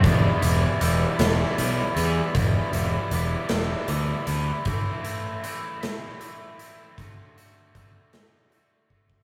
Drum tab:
HH |x-x-x-x-x-x-|x-x-x-x-x-x-|x-x-x-x-x-x-|x-x-x-x-x---|
SD |------o-----|------o-----|------o-----|------o-----|
BD |o-----------|o-----------|o-----------|o---o-----oo|